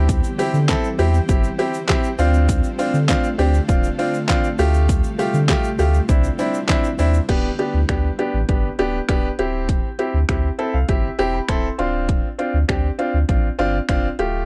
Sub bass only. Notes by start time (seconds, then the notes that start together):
Already playing: D2
0.54 D3
0.99 E2
1.29 G1
2.19 D2
2.94 D3
3.39 D2
3.69 D1
4.59 D2
5.34 D3
5.79 D2
6.09 C2
6.99 D#2
7.29 D1
7.74 D2
7.89 D2
8.34 A1
8.49 G1
8.79 D1
9.09 D1
9.39 D1
10.14 D2
10.29 D2
10.74 C2
10.89 G1
11.19 E1
11.49 D1
11.79 D1
12.54 D2
12.69 D2
13.14 D2
13.29 A1
13.59 G1
13.89 F1
14.19 D1